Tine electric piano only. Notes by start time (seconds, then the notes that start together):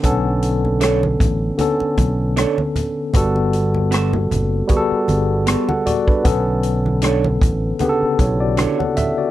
0.03 D3 B3 C#4 A4
1.58 D3 B3 C#4 A4
3.13 G3 B3 F#4 A4
4.67 G3 B3 F#4 G#4
4.77 A4
5.69 A4 F#5
5.86 F#4 D5
6.08 D4 B4
6.23 D3 B3 C#4 A4
7.80 C#3 D3 B3 G4
7.89 A4
8.20 E4 C#5
8.40 F#4 D5
8.79 A4 F#5
8.97 E5
9.18 F#4 D5